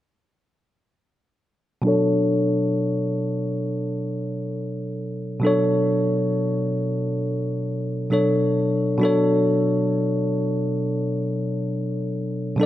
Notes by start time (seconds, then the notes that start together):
1.82 B2 F#3 D4
1.87 A4 C#5
5.40 B2 F#3 D4
5.45 A4 C#5
8.10 B2 F#3 D4 A4 C#5
8.98 B2 F#3 D4
9.03 A4 C#5
12.56 B2 F#3 D4
12.61 A4